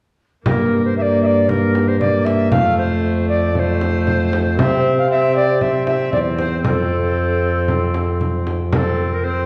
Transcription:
0.45 trombone G2, viola A#3, recorder A#4, frame drum
0.85 recorder C5
0.96 viola A#3, recorder E5
1.02 recorder D5
1.23 recorder D5 E5
1.49 viola A#3, recorder A#4, frame drum
1.75 frame drum
1.88 recorder C5
2.00 viola A#3, recorder D5, frame drum
2.25 recorder E5, frame drum
2.51 trombone F2, viola A3, recorder F5, frame drum
2.78 recorder C5
3.29 recorder D5
3.55 viola A3, recorder D5, frame drum
3.59 recorder C5
3.81 frame drum
4.07 frame drum
4.33 frame drum
4.57 trombone C3, viola C4, recorder E5, frame drum
4.98 recorder F5
5.10 viola C4, recorder E5
5.36 recorder D5
5.61 viola C4, recorder E5, frame drum
5.87 recorder E5, frame drum
6.13 trombone E2, recorder D5, frame drum
6.39 recorder C5, frame drum
6.63 trombone F2, viola C4, recorder A#4, frame drum
6.70 recorder A4
7.68 frame drum
7.94 frame drum
8.21 frame drum
8.47 frame drum
8.72 viola C4, recorder A#4, frame drum
8.77 recorder A4
9.12 recorder A#4
9.24 viola C4, recorder C5

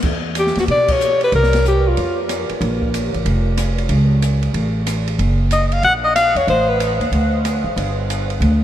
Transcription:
0.02 upright bass E2, kick, crash
0.35 alto saxophone G4, hi-hat pedal, ride
0.47 snare
0.55 upright bass D#2, snare, ride
0.60 alto saxophone F#4
0.68 upright bass B2, alto saxophone D5, ride
0.88 alto saxophone C#5, kick, crash
1.00 hi-hat pedal
1.21 alto saxophone B4, ride
1.32 upright bass C2, alto saxophone A#4, ride
1.43 snare
1.53 snare, ride
1.65 alto saxophone G4, hi-hat pedal
1.88 alto saxophone F4
1.97 upright bass F2, ride
2.29 cross-stick, hi-hat pedal, ride
2.49 muted upright bass stroke, ride
2.61 upright bass A#1, ride
2.82 kick
2.94 hi-hat pedal, ride
3.14 upright bass A1, ride
3.25 upright bass F1, ride
3.57 cross-stick, hi-hat pedal, ride
3.78 ride
3.89 upright bass C#2, ride
4.22 hi-hat pedal, ride
4.43 ride
4.54 upright bass A1, ride
4.87 cross-stick, hi-hat pedal, ride
5.08 ride
5.19 upright bass F#1, ride
5.51 alto saxophone D#5, hi-hat pedal, ride
5.68 alto saxophone D#5, ride
5.73 alto saxophone F5
5.83 upright bass A#1, alto saxophone F#5, ride
6.04 alto saxophone D#5
6.15 alto saxophone F5, cross-stick, hi-hat pedal, ride
6.35 upright bass E2, alto saxophone C#5, ride
6.47 upright bass A1, alto saxophone C5, ride
6.70 alto saxophone B4
6.80 hi-hat pedal, ride
6.99 upright bass D#2, ride
7.11 upright bass D2, ride
7.45 cross-stick, hi-hat pedal, ride
7.64 upright bass G#1
7.76 upright bass G1, ride
8.10 hi-hat pedal, ride
8.30 ride
8.40 upright bass D2, ride

